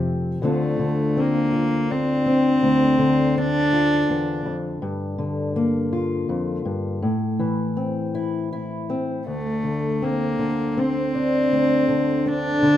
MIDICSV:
0, 0, Header, 1, 4, 480
1, 0, Start_track
1, 0, Key_signature, -1, "minor"
1, 0, Tempo, 732601
1, 280, Time_signature, 3, 2, 24, 8
1, 4596, Tempo, 747198
1, 8295, End_track
2, 0, Start_track
2, 0, Title_t, "Cello"
2, 0, Program_c, 0, 42
2, 299, Note_on_c, 0, 57, 53
2, 784, Note_on_c, 0, 58, 65
2, 794, Note_off_c, 0, 57, 0
2, 1258, Note_on_c, 0, 60, 70
2, 1268, Note_off_c, 0, 58, 0
2, 2218, Note_on_c, 0, 62, 78
2, 2227, Note_off_c, 0, 60, 0
2, 2924, Note_off_c, 0, 62, 0
2, 6050, Note_on_c, 0, 57, 57
2, 6538, Note_on_c, 0, 58, 58
2, 6547, Note_off_c, 0, 57, 0
2, 6972, Note_off_c, 0, 58, 0
2, 6972, Note_on_c, 0, 58, 44
2, 7024, Note_on_c, 0, 60, 68
2, 7034, Note_off_c, 0, 58, 0
2, 7977, Note_on_c, 0, 62, 73
2, 7987, Note_off_c, 0, 60, 0
2, 8295, Note_off_c, 0, 62, 0
2, 8295, End_track
3, 0, Start_track
3, 0, Title_t, "Steel-string acoustic guitar"
3, 0, Program_c, 1, 25
3, 0, Note_on_c, 1, 41, 68
3, 0, Note_on_c, 1, 48, 60
3, 0, Note_on_c, 1, 53, 59
3, 0, Note_on_c, 1, 57, 55
3, 0, Note_on_c, 1, 60, 56
3, 252, Note_off_c, 1, 53, 0
3, 253, Note_off_c, 1, 48, 0
3, 254, Note_off_c, 1, 41, 0
3, 255, Note_off_c, 1, 60, 0
3, 257, Note_off_c, 1, 57, 0
3, 275, Note_on_c, 1, 38, 56
3, 280, Note_on_c, 1, 50, 42
3, 286, Note_on_c, 1, 60, 41
3, 290, Note_on_c, 1, 62, 43
3, 294, Note_on_c, 1, 65, 47
3, 516, Note_off_c, 1, 50, 0
3, 519, Note_on_c, 1, 50, 47
3, 764, Note_off_c, 1, 60, 0
3, 767, Note_on_c, 1, 60, 39
3, 997, Note_off_c, 1, 65, 0
3, 1000, Note_on_c, 1, 65, 45
3, 1244, Note_off_c, 1, 62, 0
3, 1246, Note_on_c, 1, 62, 46
3, 1473, Note_off_c, 1, 60, 0
3, 1481, Note_on_c, 1, 60, 49
3, 1690, Note_off_c, 1, 60, 0
3, 1713, Note_off_c, 1, 38, 0
3, 1720, Note_on_c, 1, 38, 55
3, 1949, Note_off_c, 1, 50, 0
3, 1957, Note_on_c, 1, 50, 47
3, 2202, Note_on_c, 1, 60, 43
3, 2222, Note_off_c, 1, 62, 0
3, 2439, Note_off_c, 1, 65, 0
3, 2442, Note_on_c, 1, 65, 46
3, 2675, Note_off_c, 1, 38, 0
3, 2680, Note_on_c, 1, 40, 51
3, 2916, Note_off_c, 1, 40, 0
3, 2918, Note_on_c, 1, 41, 55
3, 3127, Note_off_c, 1, 60, 0
3, 3127, Note_off_c, 1, 65, 0
3, 3155, Note_off_c, 1, 41, 0
3, 3158, Note_on_c, 1, 43, 60
3, 3388, Note_off_c, 1, 50, 0
3, 3396, Note_on_c, 1, 50, 52
3, 3643, Note_on_c, 1, 58, 48
3, 3883, Note_on_c, 1, 65, 48
3, 4118, Note_off_c, 1, 43, 0
3, 4121, Note_on_c, 1, 41, 53
3, 4356, Note_off_c, 1, 41, 0
3, 4359, Note_on_c, 1, 43, 54
3, 4573, Note_off_c, 1, 65, 0
3, 4574, Note_off_c, 1, 58, 0
3, 4599, Note_off_c, 1, 43, 0
3, 4600, Note_off_c, 1, 50, 0
3, 4602, Note_on_c, 1, 45, 53
3, 4839, Note_on_c, 1, 52, 50
3, 5079, Note_on_c, 1, 60, 41
3, 5323, Note_on_c, 1, 64, 51
3, 5558, Note_off_c, 1, 64, 0
3, 5566, Note_on_c, 1, 64, 51
3, 5796, Note_off_c, 1, 60, 0
3, 5805, Note_on_c, 1, 60, 46
3, 6008, Note_off_c, 1, 52, 0
3, 6012, Note_off_c, 1, 60, 0
3, 6014, Note_off_c, 1, 64, 0
3, 6037, Note_off_c, 1, 45, 0
3, 6044, Note_on_c, 1, 38, 52
3, 6280, Note_on_c, 1, 50, 38
3, 6528, Note_on_c, 1, 60, 39
3, 6761, Note_off_c, 1, 50, 0
3, 6764, Note_on_c, 1, 50, 41
3, 7002, Note_off_c, 1, 60, 0
3, 7010, Note_on_c, 1, 60, 43
3, 7250, Note_on_c, 1, 62, 43
3, 7457, Note_off_c, 1, 60, 0
3, 7479, Note_off_c, 1, 38, 0
3, 7487, Note_on_c, 1, 38, 52
3, 7718, Note_off_c, 1, 50, 0
3, 7726, Note_on_c, 1, 50, 44
3, 7965, Note_on_c, 1, 60, 44
3, 7984, Note_off_c, 1, 62, 0
3, 8191, Note_off_c, 1, 50, 0
3, 8199, Note_on_c, 1, 50, 44
3, 8295, Note_off_c, 1, 38, 0
3, 8295, Note_off_c, 1, 50, 0
3, 8295, Note_off_c, 1, 60, 0
3, 8295, End_track
4, 0, Start_track
4, 0, Title_t, "Upright bass"
4, 0, Program_c, 2, 32
4, 0, Note_on_c, 2, 41, 81
4, 253, Note_off_c, 2, 41, 0
4, 8295, End_track
0, 0, End_of_file